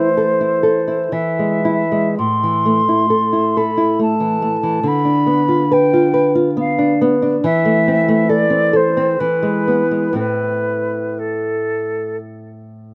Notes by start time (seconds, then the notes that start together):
Already playing: E3 A3 C5
0.17 A4
0.41 E4
0.63 A4
0.88 E4
1.12 E3 E5
1.39 G#3
1.65 E4
1.92 G#3
2.18 A2 C6
2.43 E3
2.66 A3
2.89 E4
3.10 A4
3.33 E4
3.57 A4 B5
3.77 E4
3.99 A3 A5
4.20 E3
4.42 A3
4.63 E3
4.83 D3
4.88 B5
5.05 D4
5.26 B3
5.48 F4
5.72 B4 G5
5.93 F4
6.14 B4
6.35 F4
6.57 B3 F5
6.79 D4
7.01 B3
7.22 D4
7.44 E3 E5
7.65 A3
7.88 C4
8.08 A3
8.29 A4 D5
8.50 C4
8.73 A4 C5
8.97 C4
9.19 E3 B4
9.43 G#3
9.67 B3
9.91 G#3
10.13 A2 A3 C4
10.18 B4
11.19 A4